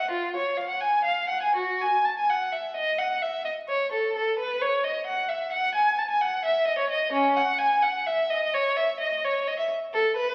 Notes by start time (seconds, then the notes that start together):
0.00 F#5
0.11 F4
0.36 C#5
0.57 F5
0.69 F#5
0.81 G#5
1.04 F5
1.29 F#5
1.43 G#5
1.55 F#4
1.81 G#5
2.05 A5
2.19 G#5
2.30 F#5
2.52 E5
2.76 D#5
2.99 F#5
3.22 E5
3.45 D#5
3.68 C#5
3.92 A4
4.16 A4
4.39 B4
4.62 C#5
4.84 D#5
5.06 F#5
5.29 E5
5.52 F#5
5.75 G#5
5.98 A5
6.10 G#5
6.21 F#5
6.45 E5
6.67 D#5
6.78 C#5
6.90 D#5
7.12 C#4
7.36 F#5
7.59 G#5
7.82 F#5
8.06 E5
8.30 D#5
8.54 C#5
8.76 E5
9.00 D#5
9.24 C#5
9.47 D#5
9.59 E5
9.94 A4
10.16 B4